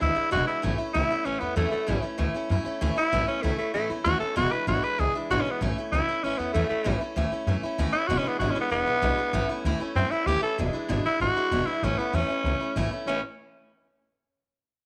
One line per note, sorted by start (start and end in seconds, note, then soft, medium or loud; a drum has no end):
0.01 0.12 D2 medium
0.01 0.16 E3 medium
0.01 0.16 G#3 medium
0.01 0.14 D4 medium
0.01 0.32 E4 loud
0.01 0.14 E4 medium
0.15 0.31 E3 soft
0.15 0.31 G#3 soft
0.15 0.32 D4 medium
0.15 0.31 E4 medium
0.15 muted upright bass stroke medium
0.31 0.43 E1 medium
0.31 0.47 E2 medium
0.31 0.47 B2 medium
0.31 0.48 E3 medium
0.31 0.47 G#3 medium
0.31 0.47 D4 medium
0.31 0.46 E4 medium
0.31 0.47 F#4 loud
0.47 0.62 E3 soft
0.47 0.63 G#3 soft
0.47 0.63 D4 medium
0.47 0.63 E4 medium
0.62 0.73 A1 medium
0.62 0.78 A2 medium
0.62 0.79 E3 medium
0.62 0.79 A3 loud
0.62 0.78 C#4 medium
0.62 0.77 E4 medium
0.78 0.93 A3 soft
0.78 0.94 C#4 medium
0.78 0.94 E4 medium
0.94 1.04 C#2 medium
0.94 1.10 A2 medium
0.94 1.10 E3 medium
0.94 1.10 A3 medium
0.94 1.10 C#4 medium
0.94 1.27 E4 loud
0.94 1.09 E4 medium
1.10 1.25 A3 soft
1.10 1.25 C#4 medium
1.10 1.26 E4 medium
1.10 muted upright bass stroke medium
1.25 1.35 A1 medium
1.25 1.41 E3 medium
1.25 1.41 A3 medium
1.25 1.42 C#4 medium
1.25 1.41 C#4 medium
1.25 1.39 E4 medium
1.40 1.51 E2 medium
1.40 1.55 A3 soft
1.40 1.56 B3 medium
1.40 1.56 C#4 medium
1.40 1.56 E4 medium
1.56 1.66 E2 medium
1.56 1.72 A2 medium
1.56 1.72 E3 medium
1.56 1.72 A3 medium
1.56 1.71 A3 medium
1.56 1.71 C#4 medium
1.56 1.69 E4 medium
1.71 2.02 A3 medium
1.71 1.87 A3 soft
1.71 1.87 C#4 soft
1.71 1.87 E4 medium
1.71 muted upright bass stroke medium
1.87 1.98 A1 loud
1.87 2.03 A2 medium
1.87 2.03 E3 medium
1.87 2.02 A3 medium
1.87 2.01 C#4 loud
1.87 2.01 E4 medium
2.02 2.17 A3 medium
2.02 2.18 C#4 medium
2.02 2.18 E4 medium
2.02 muted upright bass stroke medium
2.18 2.29 D2 medium
2.18 2.34 A2 medium
2.18 2.34 E3 medium
2.18 2.34 A3 loud
2.18 2.34 C#4 medium
2.18 2.33 E4 medium
2.34 2.49 A3 medium
2.34 2.50 C#4 medium
2.34 2.50 E4 medium
2.34 muted upright bass stroke medium
2.49 2.60 F#2 medium
2.49 2.65 E3 medium
2.49 2.66 A3 medium
2.49 2.65 C#4 medium
2.49 2.63 E4 medium
2.65 2.80 A3 medium
2.65 2.81 C#4 medium
2.65 2.81 E4 medium
2.65 muted upright bass stroke medium
2.81 2.91 D2 medium
2.81 2.97 A2 medium
2.81 2.97 E3 medium
2.81 2.97 A3 loud
2.81 2.96 C#4 loud
2.81 2.95 E4 loud
2.96 3.12 A3 soft
2.96 3.12 C#4 medium
2.96 3.12 E4 medium
2.96 3.27 E4 loud
3.12 3.22 A1 loud
3.12 3.28 A2 medium
3.12 3.28 E3 medium
3.12 3.28 A3 medium
3.12 3.27 C#4 medium
3.12 3.26 E4 medium
3.27 3.42 A3 soft
3.27 3.44 C#4 medium
3.27 3.43 C#4 medium
3.27 3.43 E4 medium
3.43 3.53 C#2 medium
3.43 3.59 A2 medium
3.43 3.59 E3 medium
3.43 3.58 A3 medium
3.43 3.59 A3 medium
3.43 3.58 C#4 medium
3.43 3.57 E4 medium
3.58 3.74 A3 medium
3.58 3.73 A3 soft
3.58 3.74 C#4 soft
3.58 3.74 E4 medium
3.58 muted upright bass stroke medium
3.74 3.84 A1 medium
3.74 3.90 E3 medium
3.74 3.89 A3 loud
3.74 3.90 A3 medium
3.74 3.90 C#4 medium
3.74 3.88 E4 medium
3.90 3.99 E2 medium
3.90 4.05 A3 soft
3.90 4.05 C#4 medium
3.90 4.05 E4 medium
4.05 4.15 D#2 medium
4.05 4.21 A2 medium
4.05 4.21 E3 medium
4.05 4.21 A3 medium
4.05 4.20 C#4 medium
4.05 4.19 E4 medium
4.05 4.19 F#4 loud
4.20 4.37 A3 soft
4.20 4.36 C#4 medium
4.20 4.36 E4 medium
4.20 4.35 A4 medium
4.20 muted upright bass stroke medium
4.36 4.46 E1 medium
4.36 4.52 E2 loud
4.36 4.52 B2 medium
4.36 4.52 E3 medium
4.36 4.51 G#3 medium
4.36 4.50 D4 loud
4.36 4.50 E4 loud
4.36 4.53 F#4 loud
4.51 4.66 E3 medium
4.51 4.67 G#3 soft
4.51 4.67 D4 medium
4.51 4.67 E4 medium
4.51 4.67 B4 loud
4.67 4.77 A1 loud
4.67 4.83 E2 medium
4.67 4.83 B2 medium
4.67 4.83 E3 medium
4.67 4.83 G#3 medium
4.67 4.82 D4 medium
4.67 4.82 E4 medium
4.67 4.85 F#4 medium
4.83 4.97 E3 soft
4.83 4.98 G#3 soft
4.83 4.99 D4 soft
4.83 4.99 E4 medium
4.83 5.01 B4 loud
4.83 muted upright bass stroke medium
4.99 5.09 C#2 medium
4.99 5.14 E3 medium
4.99 5.15 G#3 medium
4.99 5.14 D4 medium
4.99 5.14 E4 medium
4.99 5.14 G#4 loud
5.15 5.30 E3 soft
5.15 5.30 G#3 soft
5.15 5.30 D4 soft
5.15 5.30 E4 medium
5.15 muted upright bass stroke medium
5.30 5.40 G#1 medium
5.30 5.46 E2 medium
5.30 5.46 B2 medium
5.30 5.46 E3 medium
5.30 5.45 G#3 medium
5.30 5.44 D4 loud
5.30 5.44 E4 loud
5.30 5.43 F#4 loud
5.41 5.53 C#4 medium
5.41 5.61 E4 medium
5.46 5.60 E3 soft
5.46 5.61 G#3 soft
5.46 5.61 D4 soft
5.51 5.61 B3 medium
5.61 5.71 A1 loud
5.61 5.76 A2 medium
5.61 5.77 E3 medium
5.61 5.77 A3 medium
5.61 5.77 C#4 loud
5.61 5.77 E4 loud
5.78 5.93 A3 medium
5.78 5.93 C#4 medium
5.78 5.93 E4 medium
5.92 6.02 C#2 medium
5.92 6.08 A2 medium
5.92 6.08 E3 medium
5.92 6.08 A3 medium
5.92 6.08 C#4 medium
5.92 6.25 E4 medium
5.92 6.07 E4 medium
6.08 6.23 A3 medium
6.08 6.24 C#4 soft
6.08 6.24 E4 medium
6.08 muted upright bass stroke medium
6.24 6.33 A1 medium
6.24 6.39 E3 medium
6.24 6.39 A3 medium
6.24 6.40 C#4 medium
6.24 6.38 C#4 medium
6.24 6.38 E4 medium
6.39 6.48 E2 medium
6.39 6.54 A3 soft
6.39 6.53 B3 medium
6.39 6.55 C#4 medium
6.39 6.54 E4 medium
6.53 6.64 E2 medium
6.53 6.70 A2 medium
6.53 6.70 E3 medium
6.53 6.69 A3 medium
6.53 6.70 A3 medium
6.53 6.69 C#4 medium
6.53 6.68 E4 medium
6.69 7.00 A3 medium
6.69 6.84 A3 soft
6.69 6.84 C#4 medium
6.69 6.85 E4 soft
6.69 muted upright bass stroke medium
6.84 6.95 A1 loud
6.84 7.00 A2 medium
6.84 7.00 E3 medium
6.84 7.01 A3 loud
6.84 7.01 C#4 medium
6.84 7.00 E4 medium
7.01 7.16 A3 soft
7.01 7.16 C#4 medium
7.01 7.16 E4 medium
7.01 muted upright bass stroke medium
7.16 7.26 D2 medium
7.16 7.32 A2 medium
7.16 7.32 E3 medium
7.16 7.32 A3 medium
7.16 7.31 C#4 loud
7.16 7.31 E4 medium
7.31 7.47 A3 soft
7.31 7.47 C#4 medium
7.31 7.47 E4 medium
7.31 muted upright bass stroke medium
7.47 7.56 F#2 medium
7.47 7.63 E3 medium
7.47 7.63 A3 medium
7.47 7.63 C#4 medium
7.47 7.62 E4 medium
7.63 7.78 A3 medium
7.63 7.78 C#4 medium
7.63 7.79 E4 medium
7.63 muted upright bass stroke medium
7.78 7.88 D2 medium
7.78 7.94 A2 medium
7.78 7.94 E3 medium
7.78 7.94 A3 loud
7.78 7.94 C#4 loud
7.78 7.93 E4 loud
7.93 8.10 A3 soft
7.93 8.10 C#4 medium
7.93 8.09 E4 loud
7.93 8.09 E4 medium
7.93 muted upright bass stroke medium
8.08 8.18 E1 loud
8.08 8.25 E2 medium
8.08 8.25 B2 loud
8.08 8.25 E3 medium
8.08 8.25 G#3 medium
8.08 8.24 D4 loud
8.08 8.23 E4 loud
8.08 8.20 F#4 loud
8.18 8.30 C#4 medium
8.24 8.40 E3 soft
8.24 8.40 G#3 soft
8.24 8.40 D4 medium
8.24 8.40 E4 medium
8.24 muted upright bass stroke medium
8.28 8.39 B3 loud
8.39 8.49 G#1 medium
8.39 8.56 E2 medium
8.39 8.56 B2 medium
8.39 8.55 E3 medium
8.39 8.55 G#3 medium
8.39 8.54 D4 medium
8.39 8.53 E4 medium
8.39 8.53 F#4 medium
8.51 8.60 C#4 medium
8.51 8.71 E4 medium
8.55 8.69 E3 medium
8.55 8.70 G#3 soft
8.55 8.71 D4 medium
8.55 muted upright bass stroke medium
8.61 8.71 B3 loud
8.70 8.81 E1 medium
8.70 8.86 E3 medium
8.70 8.87 G#3 medium
8.70 9.62 B3 loud
8.70 8.86 D4 medium
8.70 8.85 E4 medium
8.86 8.96 B1 medium
8.86 9.01 E3 soft
8.86 9.01 G#3 soft
8.86 9.02 D4 medium
8.86 9.02 E4 medium
9.02 9.12 B1 medium
9.02 9.18 E2 medium
9.02 9.18 B2 medium
9.02 9.18 E3 medium
9.02 9.18 G#3 medium
9.02 9.17 D4 medium
9.02 9.17 E4 medium
9.18 9.33 E3 soft
9.18 9.33 G#3 medium
9.18 9.34 D4 medium
9.18 9.33 E4 medium
9.18 muted upright bass stroke medium
9.33 9.43 A1 medium
9.33 9.49 A2 medium
9.33 9.49 E3 medium
9.33 9.49 A3 loud
9.33 9.49 C#4 medium
9.33 9.48 E4 loud
9.49 9.65 A3 medium
9.49 9.65 C#4 medium
9.49 9.65 E4 medium
9.49 muted upright bass stroke medium
9.65 9.74 D2 medium
9.65 9.80 A2 medium
9.65 9.81 E3 medium
9.65 9.81 A3 medium
9.65 9.80 C#4 medium
9.65 9.79 E4 loud
9.80 9.96 A3 medium
9.80 9.96 C#4 medium
9.80 9.96 E4 medium
9.80 muted upright bass stroke medium
9.95 10.05 F#2 medium
9.95 10.11 E3 medium
9.95 10.12 A3 medium
9.95 10.13 C4 loud
9.95 10.11 C#4 medium
9.95 10.10 E4 medium
10.11 10.26 A3 medium
10.11 10.27 C#4 soft
10.11 10.27 E4 medium
10.11 10.28 E4 medium
10.11 muted upright bass stroke medium
10.26 10.36 D2 medium
10.26 10.43 A2 medium
10.26 10.43 E3 medium
10.26 10.43 A3 medium
10.26 10.43 C#4 medium
10.26 10.41 E4 loud
10.26 10.42 G4 loud
10.42 10.59 A3 soft
10.42 10.59 C#4 medium
10.42 10.58 E4 medium
10.42 10.58 A4 medium
10.58 10.70 E1 loud
10.58 10.74 E2 medium
10.58 10.74 B2 medium
10.58 10.74 E3 medium
10.58 10.74 G#3 medium
10.58 10.72 D4 medium
10.58 10.72 E4 medium
10.73 10.88 E3 soft
10.73 10.88 G#3 medium
10.73 10.89 D4 medium
10.73 10.89 E4 medium
10.73 muted upright bass stroke medium
10.88 11.00 G#1 medium
10.88 11.04 E2 medium
10.88 11.04 B2 medium
10.88 11.05 E3 medium
10.88 11.05 G#3 medium
10.88 11.05 D4 loud
10.88 11.04 E4 medium
11.05 11.19 E3 soft
11.05 11.20 G#3 medium
11.05 11.21 D4 soft
11.05 11.20 E4 soft
11.05 11.20 E4 loud
11.05 muted upright bass stroke medium
11.20 11.31 G#1 medium
11.20 11.36 E3 medium
11.20 11.36 G#3 medium
11.20 11.35 D4 medium
11.20 11.34 E4 medium
11.20 11.68 F#4 loud
11.36 11.51 E3 medium
11.36 11.51 G#3 medium
11.36 11.51 D4 medium
11.36 11.51 E4 medium
11.51 11.62 E1 medium
11.51 11.67 E2 medium
11.51 11.67 B2 medium
11.51 11.67 E3 medium
11.51 11.67 G#3 medium
11.51 11.67 D4 medium
11.51 11.66 E4 loud
11.66 11.83 E3 soft
11.66 11.83 G#3 soft
11.66 11.83 D4 medium
11.66 11.86 E4 medium
11.66 11.82 E4 medium
11.82 11.94 A1 medium
11.82 11.98 A2 medium
11.82 11.99 E3 medium
11.82 11.99 A3 medium
11.82 12.00 C#4 medium
11.82 11.99 C#4 medium
11.82 11.97 E4 medium
11.98 12.13 A3 medium
11.98 12.17 B3 medium
11.98 12.13 C#4 soft
11.98 12.13 E4 medium
11.98 muted upright bass stroke medium
12.13 12.25 E2 medium
12.13 12.29 A2 medium
12.13 12.29 E3 medium
12.13 12.29 A3 medium
12.13 12.29 C#4 medium
12.13 12.75 C#4 loud
12.13 12.28 E4 medium
12.29 12.45 A3 soft
12.29 12.45 C#4 soft
12.29 12.44 E4 medium
12.29 muted upright bass stroke medium
12.44 12.55 C#2 medium
12.44 12.60 E3 medium
12.44 12.61 A3 medium
12.44 12.61 C#4 medium
12.44 12.59 E4 medium
12.60 12.76 A3 soft
12.60 12.76 C#4 soft
12.60 12.76 E4 medium
12.76 12.87 A1 medium
12.76 12.91 A2 medium
12.76 12.92 E3 loud
12.76 12.92 A3 loud
12.76 12.92 C#4 medium
12.76 12.90 E4 loud
12.91 13.07 A3 soft
12.91 13.08 C#4 medium
12.91 13.07 E4 medium
12.91 muted upright bass stroke medium
13.06 13.21 A1 medium
13.06 13.19 A2 medium
13.06 13.20 E3 medium
13.06 13.20 A3 medium
13.06 13.22 C#4 medium
13.06 13.20 C#4 medium
13.06 13.21 E4 medium